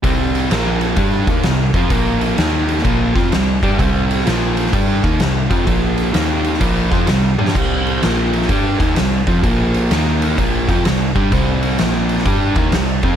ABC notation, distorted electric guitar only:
X:1
M:4/4
L:1/8
Q:"Swing" 1/4=128
K:Bblyd
V:1 name="Distorted electric guitar" clef=bass
[C,G,C]2 [B,,F,B,]2 [G,DG] [_E,B,_E] [C,G,] [F,CF] | [B,,F,B,]2 [_E,B,_E]2 [B,,F,B,] [F,CF] [C,G,] [G,DG] | [C,G,C]2 [B,,F,B,]2 [G,DG] [_E,B,_E] [C,G,] [F,CF] | [B,,F,B,]2 [_E,B,_E]2 [B,,F,B,] [F,CF] [C,G,] [G,DG] |
[C,G,C]2 [B,,F,B,]2 [G,DG] [_E,B,_E] [C,G,] [F,CF] | [B,,F,B,]2 [_E,B,_E]2 [B,,F,B,] [F,CF] [C,G,] [G,DG] | [C,G,C]2 [B,,F,B,]2 [G,DG] [_E,B,_E] [C,G,] [F,CF] |]